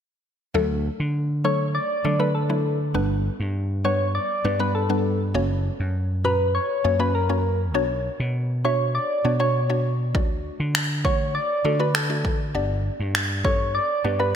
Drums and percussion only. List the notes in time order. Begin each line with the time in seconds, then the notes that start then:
10.15 kick
10.75 finger snap
11.05 kick
11.95 finger snap
12.25 kick
13.15 finger snap
13.45 kick